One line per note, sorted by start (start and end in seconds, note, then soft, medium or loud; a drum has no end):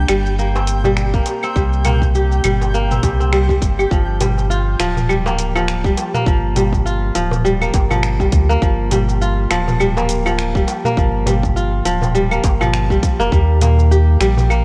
0.00 0.38 A#3 medium
0.00 0.76 D4 medium
0.00 1.21 G4 medium
0.00 3.93 G5 medium
0.08 1.23 G1 loud
0.08 0.84 G3 medium
0.08 finger snap medium
0.08 closed hi-hat medium
0.08 claves medium
0.08 shaker medium
0.26 shaker soft
0.39 1.13 A#3 medium
0.39 shaker soft
0.55 1.43 C4 medium
0.55 darbuka tek medium
0.55 shaker soft
0.67 closed hi-hat medium
0.67 shaker medium
0.84 1.55 G3 medium
0.84 darbuka ka soft
0.84 darbuka dum medium
0.84 shaker soft
0.97 finger snap medium
0.97 shaker soft
1.14 1.85 A#3 medium
1.14 kick medium
1.14 shaker soft
1.26 closed hi-hat medium
1.26 darbuka tek medium
1.26 shaker medium
1.43 2.90 C4 loud
1.43 claves medium
1.43 shaker soft
1.56 2.40 C2 medium
1.56 2.43 G3 medium
1.56 kick loud
1.56 shaker soft
1.73 shaker soft
1.85 2.74 A#3 medium
1.85 closed hi-hat medium
1.85 darbuka tek medium
1.85 darbuka dum medium
1.85 claves medium
1.85 shaker medium
2.02 kick medium
2.02 darbuka ka medium
2.02 shaker soft
2.15 3.56 G4 medium
2.15 shaker soft
2.32 shaker soft
2.44 2.99 G1 loud
2.44 3.02 G3 medium
2.44 closed hi-hat medium
2.44 darbuka dum medium
2.44 claves medium
2.44 shaker medium
2.61 darbuka tek medium
2.61 shaker soft
2.74 4.67 A#3 medium
2.74 shaker soft
2.91 3.20 C4 medium
2.91 darbuka dum medium
2.91 shaker soft
3.03 3.58 C2 loud
3.03 3.31 G3 medium
3.03 kick loud
3.03 closed hi-hat loud
3.03 darbuka tek medium
3.03 shaker medium
3.20 5.00 C4 medium
3.20 darbuka ka medium
3.20 shaker soft
3.33 3.48 G3 medium
3.33 finger snap medium
3.33 shaker soft
3.49 3.96 G3 medium
3.49 kick medium
3.49 darbuka tek soft
3.49 shaker soft
3.62 3.87 G1 medium
3.62 kick loud
3.62 closed hi-hat medium
3.62 shaker medium
3.79 5.20 G4 medium
3.79 claves medium
3.79 shaker soft
3.91 4.76 G1 loud
3.91 4.79 F3 medium
3.91 kick loud
3.91 shaker soft
4.21 5.08 G3 medium
4.21 closed hi-hat medium
4.21 darbuka tek medium
4.21 darbuka dum medium
4.21 shaker medium
4.37 darbuka ka medium
4.37 shaker soft
4.50 6.01 F4 medium
4.50 shaker soft
4.80 5.94 D1 loud
4.80 5.54 F3 medium
4.80 finger snap medium
4.80 closed hi-hat medium
4.80 shaker medium
4.97 darbuka dum medium
4.97 shaker soft
5.09 5.84 G3 medium
5.09 claves medium
5.09 shaker soft
5.26 6.14 A#3 medium
5.26 darbuka tek medium
5.26 shaker soft
5.39 closed hi-hat loud
5.39 shaker medium
5.55 6.26 F3 loud
5.55 darbuka ka medium
5.55 claves medium
5.55 shaker soft
5.68 finger snap medium
5.68 shaker soft
5.84 6.55 G3 medium
5.84 kick loud
5.84 shaker soft
5.97 closed hi-hat loud
5.97 darbuka tek medium
5.97 shaker medium
6.14 7.61 A#3 loud
6.14 darbuka dum medium
6.14 shaker soft
6.26 7.11 G1 loud
6.26 7.14 F3 medium
6.26 kick loud
6.26 shaker soft
6.56 7.43 G3 medium
6.56 closed hi-hat medium
6.56 darbuka tek medium
6.56 darbuka dum loud
6.56 shaker medium
6.73 kick medium
6.73 darbuka ka medium
6.73 shaker soft
6.86 8.37 F4 medium
6.86 shaker soft
7.15 7.70 D1 loud
7.15 7.89 F3 medium
7.15 closed hi-hat medium
7.15 shaker medium
7.31 darbuka tek medium
7.31 darbuka dum medium
7.31 shaker soft
7.45 8.19 G3 medium
7.45 shaker soft
7.61 8.49 A#3 medium
7.61 claves medium
7.61 shaker soft
7.73 8.29 G1 loud
7.73 kick loud
7.73 closed hi-hat medium
7.73 darbuka tek medium
7.73 shaker medium
7.90 8.61 F3 medium
7.90 darbuka ka soft
7.90 darbuka dum medium
7.90 claves medium
7.90 shaker soft
8.03 finger snap medium
8.03 shaker soft
8.20 8.90 G3 medium
8.20 kick medium
8.20 darbuka tek soft
8.20 shaker soft
8.32 8.57 D2 medium
8.32 kick loud
8.32 closed hi-hat medium
8.32 shaker medium
8.49 9.96 A#3 loud
8.49 shaker soft
8.62 9.46 G1 loud
8.62 9.49 F3 medium
8.62 kick loud
8.62 shaker soft
8.91 9.79 G3 medium
8.91 closed hi-hat medium
8.91 darbuka tek medium
8.91 darbuka dum medium
8.91 shaker medium
9.08 darbuka ka soft
9.08 shaker soft
9.21 10.72 F4 medium
9.21 shaker soft
9.50 10.64 D1 loud
9.50 10.25 F3 loud
9.50 finger snap medium
9.50 closed hi-hat medium
9.50 shaker medium
9.68 darbuka dum loud
9.68 shaker soft
9.79 10.54 G3 medium
9.79 claves medium
9.79 shaker soft
9.97 10.85 A#3 medium
9.97 darbuka tek medium
9.97 shaker soft
10.09 closed hi-hat medium
10.09 shaker medium
10.26 10.96 F3 medium
10.26 darbuka ka medium
10.26 claves medium
10.26 shaker soft
10.39 finger snap medium
10.39 shaker soft
10.55 11.25 G3 medium
10.55 kick loud
10.55 shaker soft
10.67 closed hi-hat medium
10.67 darbuka tek medium
10.67 shaker medium
10.84 12.31 A#3 loud
10.84 darbuka dum medium
10.84 shaker soft
10.97 11.82 G1 loud
10.97 11.84 F3 medium
10.97 kick loud
10.97 shaker soft
11.26 12.14 G3 medium
11.26 closed hi-hat medium
11.26 darbuka tek medium
11.26 darbuka dum loud
11.26 shaker medium
11.43 kick medium
11.43 darbuka ka medium
11.43 shaker soft
11.56 13.07 F4 medium
11.56 shaker soft
11.85 12.40 D1 medium
11.85 12.60 F3 loud
11.85 closed hi-hat medium
11.85 shaker medium
12.02 darbuka tek medium
12.02 darbuka dum medium
12.02 shaker soft
12.15 12.89 G3 medium
12.15 shaker soft
12.32 13.19 A#3 medium
12.32 claves medium
12.32 shaker soft
12.44 12.99 G1 loud
12.44 kick loud
12.44 closed hi-hat medium
12.44 darbuka tek medium
12.44 shaker medium
12.61 13.38 F3 loud
12.61 darbuka ka soft
12.61 darbuka dum loud
12.61 claves medium
12.61 shaker soft
12.74 finger snap medium
12.74 shaker soft
12.90 13.31 G3 medium
12.90 kick medium
12.90 darbuka tek soft
12.90 shaker soft
13.03 kick loud
13.03 closed hi-hat medium
13.03 shaker medium
13.19 13.30 F1 medium
13.19 13.61 A#3 loud
13.19 shaker soft
13.32 14.17 D#2 loud
13.32 14.20 G3 medium
13.32 kick loud
13.32 shaker soft
13.62 14.50 A#3 medium
13.62 closed hi-hat medium
13.62 darbuka tek medium
13.62 darbuka dum medium
13.62 shaker medium
13.78 darbuka ka soft
13.78 shaker soft
13.91 14.64 G4 medium
13.91 shaker soft
14.20 14.64 A#1 loud
14.20 14.64 G3 loud
14.20 finger snap medium
14.20 closed hi-hat medium
14.20 shaker medium
14.37 darbuka dum loud
14.37 shaker soft
14.50 14.64 A#3 medium
14.50 claves medium
14.50 shaker soft